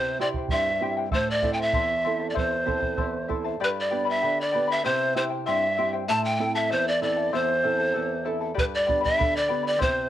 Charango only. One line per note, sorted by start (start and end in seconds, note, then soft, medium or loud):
0.00 0.19 E4 medium
0.00 0.19 G4 medium
0.00 0.19 C5 medium
0.00 0.18 E5 medium
0.00 0.20 G5 medium
0.19 0.35 E4 medium
0.19 0.35 C5 medium
0.19 0.35 E5 soft
0.19 0.35 G5 soft
0.36 0.51 E4 soft
0.36 0.51 C5 soft
0.36 0.51 G5 soft
0.52 0.80 E4 medium
0.52 0.81 C5 medium
0.52 0.80 E5 soft
0.52 0.81 G5 medium
0.81 0.97 E4 soft
0.81 0.96 C5 medium
0.81 0.97 E5 medium
0.81 0.96 G5 medium
0.97 1.11 E4 soft
0.97 1.11 C5 soft
0.97 1.11 G5 medium
1.12 1.42 E4 medium
1.12 1.42 A4 medium
1.12 1.42 C5 medium
1.12 1.41 E5 medium
1.12 1.43 A5 medium
1.42 1.58 E4 medium
1.42 1.57 C5 medium
1.42 1.58 E5 soft
1.42 1.56 A5 medium
1.58 1.72 E4 soft
1.58 1.73 C5 soft
1.58 1.73 A5 soft
1.73 2.03 E4 soft
1.73 2.03 C5 medium
1.73 2.03 E5 medium
1.73 2.04 A5 medium
2.04 2.21 E4 medium
2.04 2.20 C5 medium
2.04 2.20 E5 soft
2.04 2.19 A5 medium
2.20 2.34 E4 soft
2.20 2.34 C5 soft
2.20 2.34 A5 soft
2.34 2.65 E4 medium
2.34 2.65 A4 medium
2.34 2.65 C5 medium
2.34 2.65 E5 medium
2.34 2.65 A5 medium
2.66 2.81 E4 soft
2.66 2.80 C5 medium
2.66 2.82 E5 soft
2.66 2.79 A5 medium
2.80 2.96 E4 soft
2.80 2.97 C5 soft
2.80 2.97 A5 soft
2.97 3.28 E4 soft
2.97 3.28 C5 medium
2.97 3.27 E5 medium
2.97 3.28 A5 medium
3.28 3.44 E4 medium
3.28 3.44 C5 medium
3.28 3.45 E5 soft
3.28 3.43 A5 medium
3.45 3.61 E4 soft
3.45 3.60 C5 soft
3.45 3.61 A5 medium
3.60 3.92 G4 medium
3.60 3.90 B4 medium
3.60 3.90 D5 medium
3.60 3.89 G5 medium
3.60 3.90 B5 medium
3.90 4.05 B4 medium
3.90 4.04 D5 medium
3.90 4.07 G5 soft
3.90 4.04 B5 medium
4.05 4.21 B4 soft
4.05 4.21 D5 soft
4.05 4.22 B5 soft
4.22 4.51 B4 medium
4.22 4.52 D5 medium
4.22 4.51 G5 soft
4.22 4.52 B5 medium
4.52 4.68 B4 medium
4.52 4.67 D5 medium
4.52 4.68 G5 medium
4.52 4.66 B5 medium
4.68 4.84 B4 soft
4.68 4.85 D5 soft
4.68 4.84 B5 medium
4.84 5.14 E4 medium
4.84 5.16 G4 medium
4.84 5.15 C5 medium
4.84 5.14 E5 medium
4.84 5.15 G5 medium
5.15 5.30 E4 medium
5.15 5.29 C5 medium
5.15 5.31 E5 soft
5.15 5.29 G5 medium
5.30 5.45 E4 soft
5.30 5.45 C5 soft
5.30 5.46 G5 medium
5.46 5.76 E4 medium
5.46 5.77 C5 medium
5.46 5.76 E5 medium
5.46 5.77 G5 medium
5.77 5.93 E4 medium
5.77 5.92 C5 medium
5.77 5.93 E5 medium
5.77 5.92 G5 medium
5.93 6.08 E4 soft
5.93 6.08 C5 medium
5.93 6.09 G5 medium
6.08 6.39 E4 medium
6.08 6.39 A4 medium
6.08 6.40 C5 medium
6.08 6.39 E5 medium
6.08 6.40 A5 medium
6.40 6.56 E4 medium
6.40 6.55 A4 soft
6.40 6.55 E5 soft
6.40 6.54 A5 medium
6.55 6.69 E4 soft
6.55 6.69 A4 soft
6.55 6.69 A5 medium
6.69 7.01 E4 medium
6.69 7.02 A4 medium
6.69 7.01 E5 medium
6.69 7.01 A5 medium
7.02 7.16 E4 medium
7.02 7.16 A4 medium
7.02 7.16 E5 medium
7.02 7.15 A5 medium
7.17 7.32 E4 soft
7.17 7.32 A4 soft
7.17 7.32 A5 soft
7.33 7.62 E4 medium
7.33 7.63 A4 medium
7.33 7.64 C5 medium
7.33 7.62 E5 medium
7.33 7.63 A5 medium
7.63 7.79 E4 soft
7.63 7.78 A4 medium
7.63 7.78 E5 soft
7.63 7.77 A5 medium
7.78 7.93 E4 soft
7.78 7.93 A4 soft
7.78 7.94 A5 soft
7.94 8.24 E4 medium
7.94 8.24 A4 medium
7.94 8.24 E5 medium
7.94 8.25 A5 medium
8.25 8.41 E4 medium
8.25 8.40 A4 medium
8.25 8.41 E5 medium
8.25 8.40 A5 medium
8.41 8.55 E4 soft
8.41 8.55 A4 soft
8.41 8.55 A5 soft
8.54 8.87 G4 medium
8.54 8.86 B4 medium
8.54 8.86 D5 medium
8.54 8.85 G5 medium
8.54 8.87 B5 medium
8.86 9.00 B4 soft
8.86 9.00 D5 medium
8.86 9.03 G5 soft
8.86 9.00 B5 medium
9.01 9.16 B4 soft
9.01 9.16 D5 soft
9.01 9.17 B5 soft
9.17 9.47 B4 medium
9.17 9.47 D5 medium
9.17 9.47 G5 medium
9.17 9.48 B5 medium
9.48 9.63 B4 medium
9.48 9.63 D5 medium
9.48 9.65 G5 medium
9.48 9.62 B5 medium
9.63 9.78 B4 soft
9.63 9.79 D5 medium
9.63 9.78 B5 soft
9.78 10.09 E4 medium
9.78 10.09 G4 medium
9.78 10.09 C5 medium
9.78 10.09 E5 medium
9.78 10.09 G5 medium